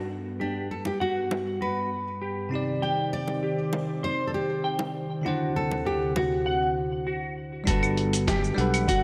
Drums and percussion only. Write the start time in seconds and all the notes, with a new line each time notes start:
0.85 high bongo
1.31 high bongo
3.28 high bongo
3.73 high bongo
4.79 high bongo
5.71 high bongo
6.16 high bongo
7.67 kick, closed hi-hat, shaker
7.83 claves, shaker
7.97 closed hi-hat
8.13 closed hi-hat, shaker
8.28 kick, snare, closed hi-hat, shaker
8.44 shaker
8.58 closed hi-hat
8.74 closed hi-hat, claves, shaker
8.88 kick, closed hi-hat, shaker